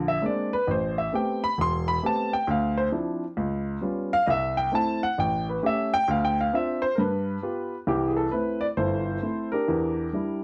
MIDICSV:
0, 0, Header, 1, 2, 480
1, 0, Start_track
1, 0, Key_signature, 0, "major"
1, 0, Tempo, 450450
1, 710, Time_signature, 4, 2, 24, 8
1, 11123, End_track
2, 0, Start_track
2, 0, Title_t, "Upright piano"
2, 0, Program_c, 0, 0
2, 0, Note_on_c, 0, 34, 80
2, 0, Note_on_c, 0, 50, 74
2, 87, Note_on_c, 0, 76, 96
2, 170, Note_off_c, 0, 34, 0
2, 172, Note_off_c, 0, 50, 0
2, 228, Note_on_c, 0, 56, 58
2, 232, Note_on_c, 0, 58, 45
2, 235, Note_on_c, 0, 62, 57
2, 236, Note_off_c, 0, 76, 0
2, 236, Note_on_c, 0, 60, 50
2, 274, Note_on_c, 0, 74, 90
2, 558, Note_off_c, 0, 74, 0
2, 560, Note_off_c, 0, 56, 0
2, 562, Note_off_c, 0, 58, 0
2, 563, Note_off_c, 0, 62, 0
2, 564, Note_off_c, 0, 60, 0
2, 567, Note_on_c, 0, 71, 107
2, 716, Note_off_c, 0, 71, 0
2, 717, Note_on_c, 0, 33, 75
2, 756, Note_on_c, 0, 72, 87
2, 1039, Note_off_c, 0, 72, 0
2, 1046, Note_on_c, 0, 76, 88
2, 1129, Note_off_c, 0, 33, 0
2, 1195, Note_off_c, 0, 76, 0
2, 1199, Note_on_c, 0, 57, 52
2, 1202, Note_on_c, 0, 59, 48
2, 1207, Note_on_c, 0, 60, 47
2, 1212, Note_on_c, 0, 67, 57
2, 1230, Note_on_c, 0, 79, 89
2, 1515, Note_off_c, 0, 79, 0
2, 1525, Note_off_c, 0, 57, 0
2, 1527, Note_off_c, 0, 59, 0
2, 1529, Note_off_c, 0, 60, 0
2, 1531, Note_on_c, 0, 83, 106
2, 1532, Note_off_c, 0, 67, 0
2, 1678, Note_off_c, 0, 83, 0
2, 1682, Note_on_c, 0, 28, 80
2, 1718, Note_on_c, 0, 84, 112
2, 2000, Note_off_c, 0, 84, 0
2, 2002, Note_on_c, 0, 83, 104
2, 2092, Note_off_c, 0, 28, 0
2, 2154, Note_off_c, 0, 83, 0
2, 2158, Note_on_c, 0, 57, 51
2, 2165, Note_on_c, 0, 59, 54
2, 2168, Note_on_c, 0, 60, 49
2, 2169, Note_on_c, 0, 67, 57
2, 2198, Note_on_c, 0, 81, 101
2, 2480, Note_off_c, 0, 81, 0
2, 2485, Note_off_c, 0, 57, 0
2, 2486, Note_on_c, 0, 79, 101
2, 2488, Note_off_c, 0, 59, 0
2, 2490, Note_off_c, 0, 60, 0
2, 2490, Note_off_c, 0, 67, 0
2, 2636, Note_off_c, 0, 79, 0
2, 2637, Note_on_c, 0, 38, 82
2, 2672, Note_on_c, 0, 77, 96
2, 2956, Note_off_c, 0, 77, 0
2, 2957, Note_on_c, 0, 72, 94
2, 3049, Note_off_c, 0, 38, 0
2, 3052, Note_off_c, 0, 72, 0
2, 3114, Note_on_c, 0, 53, 62
2, 3115, Note_on_c, 0, 60, 52
2, 3115, Note_on_c, 0, 62, 54
2, 3121, Note_on_c, 0, 64, 61
2, 3443, Note_off_c, 0, 53, 0
2, 3443, Note_off_c, 0, 60, 0
2, 3443, Note_off_c, 0, 62, 0
2, 3446, Note_off_c, 0, 64, 0
2, 3591, Note_on_c, 0, 37, 79
2, 4006, Note_off_c, 0, 37, 0
2, 4064, Note_on_c, 0, 55, 52
2, 4064, Note_on_c, 0, 59, 48
2, 4070, Note_on_c, 0, 61, 48
2, 4073, Note_on_c, 0, 65, 60
2, 4398, Note_off_c, 0, 55, 0
2, 4398, Note_off_c, 0, 59, 0
2, 4400, Note_off_c, 0, 61, 0
2, 4402, Note_off_c, 0, 65, 0
2, 4403, Note_on_c, 0, 77, 122
2, 4542, Note_on_c, 0, 75, 70
2, 4554, Note_off_c, 0, 77, 0
2, 4556, Note_on_c, 0, 36, 76
2, 4574, Note_off_c, 0, 75, 0
2, 4585, Note_on_c, 0, 76, 97
2, 4873, Note_off_c, 0, 76, 0
2, 4873, Note_on_c, 0, 79, 106
2, 4968, Note_off_c, 0, 36, 0
2, 5027, Note_on_c, 0, 57, 58
2, 5029, Note_off_c, 0, 79, 0
2, 5037, Note_on_c, 0, 60, 56
2, 5039, Note_on_c, 0, 64, 69
2, 5062, Note_on_c, 0, 81, 101
2, 5351, Note_off_c, 0, 81, 0
2, 5359, Note_off_c, 0, 57, 0
2, 5362, Note_on_c, 0, 78, 108
2, 5364, Note_off_c, 0, 60, 0
2, 5365, Note_off_c, 0, 64, 0
2, 5513, Note_off_c, 0, 78, 0
2, 5521, Note_on_c, 0, 33, 77
2, 5539, Note_on_c, 0, 79, 102
2, 5829, Note_off_c, 0, 79, 0
2, 5853, Note_on_c, 0, 71, 79
2, 5931, Note_off_c, 0, 33, 0
2, 5997, Note_on_c, 0, 57, 56
2, 5998, Note_off_c, 0, 71, 0
2, 5998, Note_on_c, 0, 61, 55
2, 6003, Note_on_c, 0, 67, 62
2, 6035, Note_on_c, 0, 76, 96
2, 6317, Note_off_c, 0, 76, 0
2, 6324, Note_off_c, 0, 57, 0
2, 6324, Note_off_c, 0, 61, 0
2, 6325, Note_on_c, 0, 79, 126
2, 6327, Note_off_c, 0, 67, 0
2, 6475, Note_off_c, 0, 79, 0
2, 6478, Note_on_c, 0, 38, 81
2, 6508, Note_on_c, 0, 77, 99
2, 6644, Note_off_c, 0, 77, 0
2, 6656, Note_on_c, 0, 79, 103
2, 6797, Note_off_c, 0, 79, 0
2, 6827, Note_on_c, 0, 77, 100
2, 6889, Note_off_c, 0, 38, 0
2, 6961, Note_on_c, 0, 60, 60
2, 6962, Note_on_c, 0, 62, 50
2, 6963, Note_off_c, 0, 77, 0
2, 6967, Note_on_c, 0, 65, 65
2, 6980, Note_on_c, 0, 76, 85
2, 7266, Note_on_c, 0, 72, 104
2, 7270, Note_off_c, 0, 76, 0
2, 7285, Note_off_c, 0, 60, 0
2, 7286, Note_off_c, 0, 62, 0
2, 7289, Note_off_c, 0, 65, 0
2, 7409, Note_on_c, 0, 70, 64
2, 7425, Note_off_c, 0, 72, 0
2, 7439, Note_on_c, 0, 43, 77
2, 7443, Note_off_c, 0, 70, 0
2, 7456, Note_on_c, 0, 71, 89
2, 7849, Note_off_c, 0, 43, 0
2, 7911, Note_on_c, 0, 59, 55
2, 7918, Note_on_c, 0, 65, 56
2, 7920, Note_on_c, 0, 67, 56
2, 8241, Note_off_c, 0, 59, 0
2, 8244, Note_off_c, 0, 65, 0
2, 8246, Note_off_c, 0, 67, 0
2, 8277, Note_off_c, 0, 71, 0
2, 8387, Note_on_c, 0, 52, 66
2, 8388, Note_on_c, 0, 36, 69
2, 8399, Note_on_c, 0, 64, 61
2, 8400, Note_on_c, 0, 67, 85
2, 8606, Note_on_c, 0, 68, 61
2, 8638, Note_off_c, 0, 67, 0
2, 8694, Note_off_c, 0, 68, 0
2, 8702, Note_on_c, 0, 69, 79
2, 8804, Note_off_c, 0, 36, 0
2, 8804, Note_off_c, 0, 52, 0
2, 8859, Note_on_c, 0, 71, 83
2, 8867, Note_off_c, 0, 64, 0
2, 8871, Note_on_c, 0, 60, 45
2, 8873, Note_off_c, 0, 69, 0
2, 8873, Note_on_c, 0, 57, 48
2, 8883, Note_on_c, 0, 64, 54
2, 9171, Note_on_c, 0, 74, 101
2, 9189, Note_off_c, 0, 71, 0
2, 9202, Note_off_c, 0, 60, 0
2, 9203, Note_off_c, 0, 57, 0
2, 9208, Note_off_c, 0, 64, 0
2, 9224, Note_off_c, 0, 74, 0
2, 9346, Note_on_c, 0, 72, 89
2, 9348, Note_on_c, 0, 31, 68
2, 9353, Note_on_c, 0, 69, 63
2, 9358, Note_on_c, 0, 64, 67
2, 9765, Note_off_c, 0, 31, 0
2, 9822, Note_off_c, 0, 64, 0
2, 9831, Note_on_c, 0, 57, 48
2, 9832, Note_on_c, 0, 60, 44
2, 9838, Note_on_c, 0, 64, 58
2, 10102, Note_off_c, 0, 72, 0
2, 10141, Note_on_c, 0, 70, 89
2, 10157, Note_on_c, 0, 67, 56
2, 10159, Note_on_c, 0, 62, 61
2, 10163, Note_off_c, 0, 57, 0
2, 10163, Note_off_c, 0, 60, 0
2, 10166, Note_off_c, 0, 64, 0
2, 10271, Note_off_c, 0, 69, 0
2, 10316, Note_on_c, 0, 40, 70
2, 10316, Note_on_c, 0, 52, 65
2, 10731, Note_off_c, 0, 40, 0
2, 10731, Note_off_c, 0, 52, 0
2, 10785, Note_off_c, 0, 62, 0
2, 10796, Note_on_c, 0, 55, 49
2, 10801, Note_on_c, 0, 62, 44
2, 10805, Note_on_c, 0, 64, 55
2, 11063, Note_off_c, 0, 70, 0
2, 11071, Note_off_c, 0, 67, 0
2, 11123, Note_off_c, 0, 55, 0
2, 11123, Note_off_c, 0, 62, 0
2, 11123, Note_off_c, 0, 64, 0
2, 11123, End_track
0, 0, End_of_file